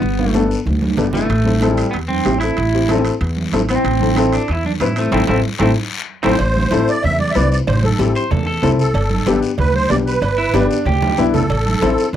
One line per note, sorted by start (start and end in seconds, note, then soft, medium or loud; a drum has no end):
0.00 0.53 G1 loud
0.00 0.31 B3 medium
0.00 high conga soft
0.00 long guiro medium
0.19 0.24 B3 medium
0.19 0.24 D4 medium
0.19 0.25 F4 medium
0.19 high conga medium
0.31 0.45 A3 medium
0.31 0.57 B3 medium
0.31 0.57 D4 medium
0.31 high conga medium
0.31 short guiro medium
0.35 0.57 A4 medium
0.51 short guiro medium
0.66 0.92 D2 medium
0.66 high conga medium
0.66 long guiro medium
0.82 high conga medium
0.97 1.24 G1 medium
0.97 1.04 B3 medium
0.97 1.04 D4 medium
0.97 1.04 A4 medium
0.97 low conga medium
0.97 short guiro medium
1.13 1.74 A3 medium
1.13 1.25 B3 medium
1.13 1.25 D4 medium
1.13 1.26 E4 medium
1.13 low conga medium
1.13 short guiro medium
1.29 1.81 A1 loud
1.29 high conga soft
1.29 high timbale medium
1.29 long guiro medium
1.44 1.51 C4 medium
1.44 1.52 E4 medium
1.44 1.52 A4 medium
1.44 high conga medium
1.61 1.84 C4 medium
1.61 1.85 E4 medium
1.61 1.85 A4 loud
1.61 high conga medium
1.61 high timbale medium
1.61 short guiro medium
1.74 1.96 G3 medium
1.74 high timbale medium
1.74 short guiro medium
1.91 2.20 E2 medium
1.91 1.96 B3 medium
1.91 high conga soft
1.91 high timbale medium
1.91 long guiro medium
2.08 2.39 C4 medium
2.08 high conga medium
2.25 2.51 A1 medium
2.25 2.31 C4 medium
2.25 2.31 E4 medium
2.25 2.31 G4 medium
2.25 high conga medium
2.25 high timbale medium
2.25 low timbale medium
2.25 short guiro medium
2.40 2.53 C4 medium
2.40 3.01 E4 loud
2.40 2.53 E4 medium
2.40 2.54 A4 medium
2.40 high timbale medium
2.40 short guiro medium
2.57 3.09 A1 loud
2.57 high conga soft
2.57 high timbale medium
2.57 long guiro medium
2.74 2.79 C4 medium
2.74 2.80 E4 medium
2.74 2.80 G4 medium
2.88 3.12 C4 medium
2.88 3.12 E4 medium
2.88 3.12 A4 medium
2.88 high conga medium
2.88 high timbale medium
2.88 short guiro medium
3.05 high timbale medium
3.05 short guiro medium
3.20 3.47 E2 loud
3.20 high conga soft
3.20 high timbale medium
3.20 long guiro medium
3.36 high conga medium
3.52 3.78 A1 medium
3.52 3.59 C4 medium
3.52 3.59 E4 medium
3.52 3.59 A4 medium
3.52 high conga medium
3.52 high timbale medium
3.52 low timbale medium
3.52 short guiro medium
3.69 3.81 C4 medium
3.69 4.35 C4 medium
3.69 3.81 E4 medium
3.69 3.81 C5 medium
3.69 high timbale medium
3.69 short guiro medium
3.84 4.36 A1 loud
3.84 high conga soft
3.84 high timbale medium
3.84 long guiro medium
4.00 4.07 C4 medium
4.00 4.07 E4 medium
4.00 4.07 A4 medium
4.00 high conga medium
4.16 4.39 C4 medium
4.16 4.39 E4 medium
4.16 4.40 A4 medium
4.16 high conga medium
4.16 high timbale medium
4.16 short guiro medium
4.33 4.51 D4 medium
4.33 high timbale medium
4.33 short guiro medium
4.48 4.75 E2 medium
4.48 4.66 E4 loud
4.48 high conga soft
4.48 high timbale medium
4.48 long guiro medium
4.64 4.71 D4 medium
4.64 high conga medium
4.80 5.07 A1 medium
4.80 4.86 C4 medium
4.80 4.86 E4 medium
4.80 4.98 E4 loud
4.80 4.87 B4 medium
4.80 high conga medium
4.80 high timbale medium
4.80 low timbale medium
4.80 short guiro medium
4.96 5.11 A3 medium
4.96 5.08 C4 medium
4.96 5.08 E4 medium
4.96 5.08 C5 medium
4.96 high timbale medium
4.96 short guiro medium
5.11 5.25 A1 loud
5.11 5.23 A3 medium
5.11 5.23 C4 loud
5.11 5.23 C4 medium
5.11 5.23 E4 loud
5.11 5.23 E4 medium
5.11 5.23 A4 medium
5.11 high conga medium
5.11 high timbale medium
5.11 long guiro loud
5.27 5.40 A1 medium
5.27 5.39 A3 medium
5.27 5.39 C4 medium
5.27 5.39 E4 medium
5.27 5.39 A4 medium
5.27 high conga loud
5.27 high timbale medium
5.27 long guiro medium
5.59 5.72 A1 loud
5.59 5.71 A3 medium
5.59 5.71 C4 medium
5.59 5.71 E4 medium
5.59 5.71 E4 loud
5.59 5.71 A4 medium
5.59 high conga medium
5.59 high timbale medium
5.59 long guiro loud
6.23 6.36 A1 medium
6.23 6.34 A3 medium
6.23 6.34 C4 medium
6.23 6.35 C4 medium
6.23 6.34 E4 medium
6.23 6.35 E4 medium
6.23 6.35 A4 medium
6.23 6.90 C5 medium
6.23 high conga medium
6.23 high timbale loud
6.23 long guiro loud
6.39 6.65 A1 medium
6.39 cowbell loud
6.39 high conga soft
6.39 long guiro medium
6.55 high conga medium
6.71 6.85 A1 medium
6.71 6.94 C4 medium
6.71 6.94 E4 medium
6.71 6.94 A4 medium
6.71 cowbell medium
6.71 high conga medium
6.71 short guiro medium
6.88 7.03 D5 medium
6.88 short guiro medium
7.03 7.30 E2 medium
7.03 7.19 E5 loud
7.03 cowbell medium
7.03 high conga soft
7.03 low conga medium
7.03 long guiro medium
7.19 7.32 D5 medium
7.19 high conga medium
7.31 7.35 E5 medium
7.31 cowbell medium
7.31 low timbale medium
7.35 7.61 C2 medium
7.35 7.58 C4 medium
7.35 7.58 E4 medium
7.35 7.58 B4 medium
7.35 7.49 D5 medium
7.35 high conga medium
7.35 short guiro medium
7.51 7.58 D5 medium
7.51 short guiro medium
7.67 7.93 A1 loud
7.67 7.84 C5 medium
7.67 cowbell loud
7.67 high conga soft
7.67 low conga medium
7.67 long guiro medium
7.83 8.13 A4 medium
7.83 high conga medium
7.98 8.12 A1 medium
7.98 8.21 C4 medium
7.98 8.22 E4 medium
7.98 8.22 G4 medium
7.98 cowbell medium
7.98 high conga medium
7.98 short guiro medium
8.15 8.31 C5 medium
8.15 short guiro medium
8.31 8.57 E2 loud
8.31 8.46 A4 medium
8.31 cowbell medium
8.31 high conga soft
8.31 low conga medium
8.31 long guiro medium
8.47 8.69 A4 medium
8.62 8.89 C2 medium
8.62 8.85 C4 medium
8.62 8.85 E4 medium
8.62 8.86 A4 medium
8.62 cowbell medium
8.62 high conga medium
8.62 low conga medium
8.62 low timbale medium
8.62 short guiro medium
8.79 9.39 A4 medium
8.79 short guiro medium
8.94 9.20 G1 medium
8.94 cowbell loud
8.94 high conga soft
8.94 long guiro medium
9.10 high conga medium
9.26 9.39 G1 medium
9.26 9.49 B3 medium
9.26 9.50 D4 medium
9.26 9.50 G4 loud
9.26 cowbell medium
9.26 high conga medium
9.26 short guiro medium
9.42 short guiro medium
9.58 9.84 D2 medium
9.58 9.74 B4 medium
9.58 cowbell medium
9.58 high conga soft
9.58 low conga medium
9.58 long guiro medium
9.74 9.90 C5 medium
9.74 high conga medium
9.89 10.16 B1 medium
9.89 10.13 B3 medium
9.89 10.13 D4 medium
9.89 10.13 G4 medium
9.89 9.97 D5 loud
9.89 cowbell medium
9.89 high conga medium
9.89 low timbale medium
9.89 short guiro medium
10.06 10.66 B4 medium
10.06 short guiro medium
10.22 10.48 G1 medium
10.22 cowbell loud
10.22 high conga soft
10.22 long guiro medium
10.38 10.55 E4 medium
10.54 10.67 G1 medium
10.54 10.76 B3 medium
10.54 10.77 D4 medium
10.54 10.88 D4 medium
10.54 10.77 G4 loud
10.54 cowbell medium
10.54 high conga medium
10.54 short guiro medium
10.71 short guiro medium
10.85 11.11 D2 medium
10.85 11.23 G4 medium
10.85 cowbell medium
10.85 high conga soft
10.85 low conga medium
10.85 long guiro medium
11.02 high conga loud
11.18 11.44 B1 medium
11.18 11.40 B3 medium
11.18 11.41 D4 medium
11.18 11.41 E4 loud
11.18 cowbell medium
11.18 high conga medium
11.18 short guiro medium
11.33 12.09 A4 medium
11.33 low conga medium
11.33 short guiro medium
11.50 11.75 A1 loud
11.50 cowbell loud
11.50 high conga soft
11.50 long guiro medium
11.67 high conga medium
11.82 11.95 A1 medium
11.82 12.04 C4 medium
11.82 12.04 E4 medium
11.82 12.05 A4 loud
11.82 cowbell medium
11.82 high conga medium
11.82 short guiro medium
11.98 short guiro medium
12.13 12.16 E2 medium